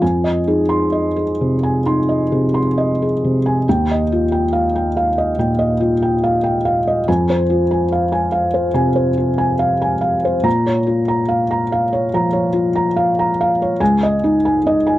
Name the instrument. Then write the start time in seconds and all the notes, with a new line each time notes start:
felt piano
0.02 F2 G#5
0.24 D#5
0.47 D#4 G#4
0.69 C6
0.92 D#5
1.16 G#4
1.41 C3
1.63 G#5
1.86 D#4 C6
2.09 D#5
2.32 C3 G#4
2.54 C6
2.78 D#5
3.02 G#4
3.24 C3
3.46 G#5
3.69 D#2 G5
3.91 D#5
4.12 F4
4.32 G5
4.53 F5
4.76 G5
4.97 F5
5.18 D#5
5.39 A#2 G5
5.59 D#5
5.80 F4
6.02 G5
6.24 F5
6.44 G5
6.65 F5
6.87 D#5
7.08 F2 G#5
7.30 C5
7.50 F4
7.71 G#5
7.92 F5
8.12 G#5
8.32 F5
8.54 C5
8.74 C3 G#5
8.96 C5
9.18 F4
9.38 G#5
9.59 F5
9.82 G#5
10.01 F5
10.25 C5
10.43 A#2 A#5
10.66 C#5
10.87 F4
11.08 A#5
11.29 F5
11.51 A#5
11.72 F5
11.93 C#5
12.14 F3 A#5
12.33 C#5
12.53 F4
12.76 A#5
12.96 F5
13.19 A#5
13.41 F5
13.62 C#5
13.80 C#2 G#5
14.03 D#5
14.24 D#4
14.45 G#5
14.66 D#4 D#5
14.87 G#5